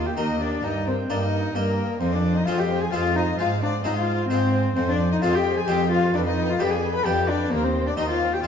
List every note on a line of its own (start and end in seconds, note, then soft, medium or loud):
0.00 0.12 D#2 soft
0.00 0.17 A#4 soft
0.00 0.15 G5 soft
0.06 0.16 G4 medium
0.06 0.17 G5 soft
0.16 0.58 D#2 soft
0.16 0.54 D#2 soft
0.16 0.50 A#3 soft
0.16 0.40 D#4 medium
0.16 0.51 D#4 soft
0.16 0.40 A#4 soft
0.16 0.40 D#5 medium
0.16 0.38 G5 soft
0.39 0.65 D4 medium
0.39 0.63 A#4 soft
0.39 0.63 D5 soft
0.39 0.61 G5 soft
0.63 1.03 G2 medium
0.63 1.00 G2 soft
0.63 0.89 D#4 medium
0.63 0.86 A#4 soft
0.63 0.86 D#5 medium
0.63 0.85 G5 soft
0.86 1.11 C4 medium
0.86 1.09 A#4 soft
0.86 0.94 C5 soft
0.86 1.08 G5 soft
1.09 1.49 G2 soft
1.09 1.47 G2 soft
1.09 1.43 A#3 soft
1.09 1.21 D4 medium
1.09 1.43 D#4 soft
1.09 1.32 A#4 soft
1.09 1.20 D5 soft
1.09 1.30 G5 soft
1.20 1.57 D#4 medium
1.20 1.55 D#5 medium
1.32 1.54 A#4 soft
1.32 1.53 G5 soft
1.54 1.95 G2 soft
1.54 1.93 G2 soft
1.54 1.89 A#3 soft
1.54 2.01 A#3 medium
1.54 1.89 D#4 soft
1.54 2.00 A#4 soft
1.54 1.76 A#4 soft
1.54 1.77 G5 soft
1.78 2.00 A#4 soft
1.78 2.01 G5 soft
2.00 2.41 F2 soft
2.00 2.38 F2 soft
2.00 2.16 C4 medium
2.00 2.12 C5 soft
2.00 2.23 C5 soft
2.00 2.23 G#5 soft
2.12 2.38 D4 medium
2.12 2.35 D5 soft
2.24 2.44 C5 soft
2.24 2.46 G#5 soft
2.35 2.47 D#4 medium
2.35 2.47 D#5 medium
2.46 2.87 F2 medium
2.46 2.84 F2 soft
2.46 2.80 G#3 soft
2.46 2.80 C4 soft
2.46 2.60 F4 medium
2.46 2.81 F4 soft
2.46 2.68 C5 soft
2.46 2.58 F5 medium
2.46 2.69 G#5 soft
2.57 2.82 G4 medium
2.57 2.80 G5 medium
2.69 2.91 C5 soft
2.69 2.91 G#5 soft
2.80 2.92 G#4 medium
2.80 2.92 G#5 medium
2.92 3.33 F2 soft
2.92 3.30 F2 soft
2.92 3.26 G#3 soft
2.92 3.26 C4 soft
2.92 3.17 F4 medium
2.92 3.27 F4 soft
2.92 3.15 C5 soft
2.92 3.15 F5 medium
2.92 3.15 G#5 soft
3.15 3.38 D#4 medium
3.15 3.37 C5 soft
3.15 3.38 D#5 medium
3.15 3.38 G#5 soft
3.38 3.79 G#2 medium
3.38 3.76 G#2 soft
3.38 3.83 G#3 soft
3.38 3.47 F4 medium
3.38 3.61 C5 soft
3.38 3.60 F5 medium
3.38 3.60 G#5 soft
3.62 3.70 D4 medium
3.62 3.82 C5 soft
3.62 3.84 D5 medium
3.62 3.84 G#5 soft
3.83 4.21 G#2 soft
3.83 4.25 G#2 soft
3.83 4.17 G#3 soft
3.83 4.18 C4 soft
3.83 3.90 D#4 medium
3.83 4.18 F4 soft
3.83 4.06 C5 soft
3.83 3.95 D#5 soft
3.83 4.07 G#5 soft
3.95 4.28 F4 medium
3.95 4.30 F5 medium
4.07 4.29 C5 soft
4.07 4.30 G#5 soft
4.29 4.71 G#2 soft
4.29 4.67 G#2 soft
4.29 4.63 G#3 soft
4.29 4.75 C4 medium
4.29 4.64 C4 soft
4.29 4.64 F4 soft
4.29 4.74 C5 soft
4.29 4.52 C5 medium
4.29 4.53 G#5 soft
4.53 4.74 C5 soft
4.53 4.75 G#5 soft
4.75 5.16 F2 medium
4.75 5.14 F2 soft
4.75 4.87 C4 medium
4.75 4.87 C5 medium
4.75 4.97 C5 soft
4.75 4.99 G#5 soft
4.87 4.97 D4 medium
4.87 5.10 D5 medium
4.98 5.20 C5 soft
4.98 5.22 G#5 soft
5.11 5.23 D#4 medium
5.11 5.15 D#5 medium
5.21 5.62 F2 soft
5.21 5.59 F2 soft
5.21 5.55 G#3 soft
5.21 5.56 C4 soft
5.21 5.36 F4 medium
5.21 5.56 F4 soft
5.21 5.44 C5 soft
5.21 5.33 F5 medium
5.21 5.45 G#5 soft
5.33 5.58 G4 medium
5.33 5.56 G5 medium
5.45 5.67 C5 soft
5.45 5.66 G#5 soft
5.56 5.67 G#4 medium
5.56 5.67 G#5 medium
5.67 6.08 F2 medium
5.67 6.05 F2 soft
5.67 6.01 G#3 soft
5.67 6.01 C4 soft
5.67 6.01 F4 soft
5.67 5.90 G4 medium
5.67 5.90 C5 soft
5.67 5.91 G5 medium
5.67 5.89 G#5 soft
5.90 6.16 F4 medium
5.90 6.13 C5 soft
5.90 6.13 F5 soft
5.90 6.13 G#5 soft
6.13 6.54 F2 medium
6.13 6.51 F2 soft
6.13 6.25 D4 medium
6.13 6.34 B4 soft
6.13 6.18 D5 medium
6.13 6.35 G5 soft
6.26 6.50 D#4 medium
6.26 6.48 D#5 medium
6.36 6.58 B4 medium
6.36 6.58 G5 soft
6.49 6.61 F4 medium
6.49 6.60 F5 medium
6.58 7.00 F2 medium
6.58 6.97 F2 soft
6.58 6.93 B3 soft
6.58 6.93 D4 soft
6.58 6.72 G4 medium
6.58 6.81 B4 soft
6.58 6.81 G5 soft
6.58 6.71 G5 medium
6.70 6.94 G#4 medium
6.70 6.94 G#5 medium
6.82 7.03 B4 soft
6.82 7.04 G5 soft
6.94 7.06 B4 medium
6.94 7.05 B5 medium
7.04 7.46 F2 medium
7.04 7.43 F2 soft
7.04 7.39 B3 soft
7.04 7.39 D4 soft
7.04 7.30 G4 medium
7.04 7.27 B4 soft
7.04 7.28 G5 medium
7.04 7.26 G5 soft
7.27 7.53 D4 medium
7.27 7.51 B4 soft
7.27 7.51 D5 soft
7.27 7.50 G5 soft
7.51 7.89 D#2 soft
7.51 7.92 D#2 medium
7.51 7.65 A#3 medium
7.51 7.63 A#4 medium
7.51 7.74 C5 soft
7.51 7.73 G5 medium
7.63 7.88 C4 medium
7.63 7.86 C5 medium
7.74 7.97 C5 soft
7.74 7.97 G5 soft
7.86 7.97 D4 medium
7.86 7.97 D5 soft
7.97 8.35 D#2 soft
7.97 8.38 D#2 medium
7.97 8.31 C4 soft
7.97 8.31 D#4 soft
7.97 8.09 D#4 medium
7.97 8.19 C5 soft
7.97 8.09 D#5 soft
7.97 8.19 G5 soft
8.09 8.34 F4 medium
8.09 8.32 F5 medium
8.20 8.43 C5 soft
8.20 8.43 G5 soft
8.33 8.43 G4 medium
8.33 8.44 G5 medium
8.43 8.47 F2 soft
8.43 8.47 G#3 soft
8.43 8.47 D4 soft
8.43 8.47 F4 medium
8.43 8.47 D5 soft